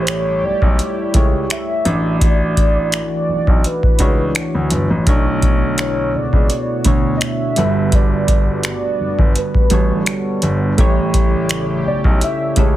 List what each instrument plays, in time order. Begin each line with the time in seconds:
Already playing: grand piano A1, analog synth pad G3 A3 E4 G4, synth keys A3 E4 G4 C#5
0.02 soft synth lead C5
0.07 soft synth lead C#5, finger snap, closed hi-hat
0.43 grand piano B1, soft synth lead D5
0.62 grand piano B1, kick
0.79 closed hi-hat
1.14 grand piano C#2, synth keys A3 E4 G4 C#5, kick, closed hi-hat
1.50 soft synth lead E5, finger snap, closed hi-hat
1.85 grand piano A1, analog synth pad E3 E4 F#4, synth keys D4 F#4 D5, closed hi-hat
2.21 soft synth lead D5, kick, closed hi-hat
2.57 kick, closed hi-hat
2.92 soft synth lead D5, finger snap, closed hi-hat
3.28 grand piano B1
3.47 grand piano B1, kick
3.64 soft synth lead B4, closed hi-hat
3.83 kick
3.99 grand piano C#2, synth keys D4 F#4 C#5, kick, closed hi-hat
4.35 finger snap, closed hi-hat
4.55 grand piano D2
4.70 grand piano G1, closed hi-hat
4.90 grand piano A1
5.06 grand piano B1, synth keys B2 A3 D4 C#5, analog synth pad D3 B3, kick, closed hi-hat
5.42 kick, closed hi-hat
5.78 soft synth lead C#5, finger snap, closed hi-hat
6.14 grand piano C#2, soft synth lead D5
6.33 grand piano C#2, kick
6.50 closed hi-hat
6.84 grand piano D2, synth keys B2 A3 D4 C#5, kick, closed hi-hat
7.17 soft synth lead D#5
7.21 soft synth lead E5, finger snap, closed hi-hat
7.56 grand piano G1, analog synth pad D3 G3 B3, synth keys G3 F#4 A4 B4, closed hi-hat
7.92 soft synth lead D5, kick, closed hi-hat
8.28 kick, closed hi-hat
8.63 soft synth lead D5, finger snap, closed hi-hat
9.00 grand piano G1
9.19 grand piano G1, kick
9.36 soft synth lead B4, closed hi-hat
9.55 kick
9.70 grand piano A1, synth keys G3 F#4 A4 C#5, kick, closed hi-hat
10.06 finger snap, closed hi-hat
10.42 grand piano G1, closed hi-hat
10.77 grand piano A1, analog synth pad C#3 A3 E4 G4, synth keys A3 E4 G4 C#5, kick, closed hi-hat
11.14 kick, closed hi-hat
11.49 soft synth lead C#5, finger snap, closed hi-hat
11.86 grand piano B1, soft synth lead D5
12.04 grand piano B1, kick
12.21 soft synth lead E5, closed hi-hat
12.56 grand piano C#2, synth keys A3 E4 G4 A4, soft synth lead C#5, kick, closed hi-hat